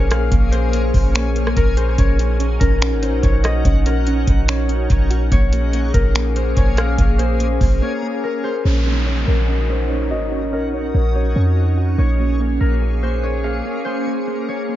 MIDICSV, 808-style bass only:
0, 0, Header, 1, 2, 480
1, 0, Start_track
1, 0, Tempo, 416667
1, 365, Time_signature, 4, 2, 24, 8
1, 17004, End_track
2, 0, Start_track
2, 0, Title_t, "808-style bass"
2, 0, Program_c, 0, 38
2, 0, Note_on_c, 0, 34, 104
2, 345, Note_off_c, 0, 34, 0
2, 364, Note_on_c, 0, 34, 114
2, 1056, Note_off_c, 0, 34, 0
2, 1083, Note_on_c, 0, 34, 101
2, 1775, Note_off_c, 0, 34, 0
2, 1803, Note_on_c, 0, 34, 107
2, 2265, Note_off_c, 0, 34, 0
2, 2285, Note_on_c, 0, 34, 114
2, 2976, Note_off_c, 0, 34, 0
2, 3003, Note_on_c, 0, 34, 107
2, 3366, Note_on_c, 0, 32, 99
2, 3383, Note_off_c, 0, 34, 0
2, 3546, Note_on_c, 0, 34, 103
2, 3563, Note_off_c, 0, 32, 0
2, 3717, Note_off_c, 0, 34, 0
2, 3724, Note_on_c, 0, 34, 107
2, 4186, Note_off_c, 0, 34, 0
2, 4204, Note_on_c, 0, 34, 114
2, 4896, Note_off_c, 0, 34, 0
2, 4923, Note_on_c, 0, 34, 108
2, 5616, Note_off_c, 0, 34, 0
2, 5644, Note_on_c, 0, 34, 108
2, 6106, Note_off_c, 0, 34, 0
2, 6124, Note_on_c, 0, 34, 106
2, 6816, Note_off_c, 0, 34, 0
2, 6844, Note_on_c, 0, 34, 107
2, 7536, Note_off_c, 0, 34, 0
2, 7566, Note_on_c, 0, 34, 101
2, 8026, Note_off_c, 0, 34, 0
2, 8045, Note_on_c, 0, 34, 108
2, 8736, Note_off_c, 0, 34, 0
2, 8765, Note_on_c, 0, 34, 98
2, 8995, Note_off_c, 0, 34, 0
2, 9965, Note_on_c, 0, 34, 110
2, 10657, Note_off_c, 0, 34, 0
2, 10686, Note_on_c, 0, 34, 101
2, 11646, Note_on_c, 0, 32, 98
2, 11663, Note_off_c, 0, 34, 0
2, 12127, Note_on_c, 0, 34, 96
2, 12144, Note_off_c, 0, 32, 0
2, 12582, Note_off_c, 0, 34, 0
2, 12606, Note_on_c, 0, 34, 101
2, 13067, Note_off_c, 0, 34, 0
2, 13085, Note_on_c, 0, 41, 101
2, 13776, Note_off_c, 0, 41, 0
2, 13804, Note_on_c, 0, 34, 111
2, 14496, Note_off_c, 0, 34, 0
2, 14525, Note_on_c, 0, 34, 97
2, 15679, Note_off_c, 0, 34, 0
2, 17004, End_track
0, 0, End_of_file